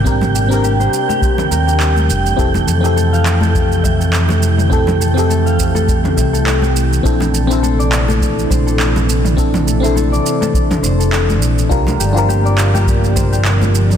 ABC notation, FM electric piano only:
X:1
M:4/4
L:1/16
Q:"Swing 16ths" 1/4=103
K:Bblyd
V:1 name="FM electric piano"
[CDGB]3 [CDGB]8- [CDGB]3 z2 | [CEGA]3 [E,CGA]12- [E,CGA] | [CEGA]3 [E,CGA]12- [E,CGA] | [CDEA]3 [CDEA]12- [CDEA] |
[CDEA]3 [CDEA]12- [CDEA] | [DFGB]3 [DFGB]12- [DFGB] |]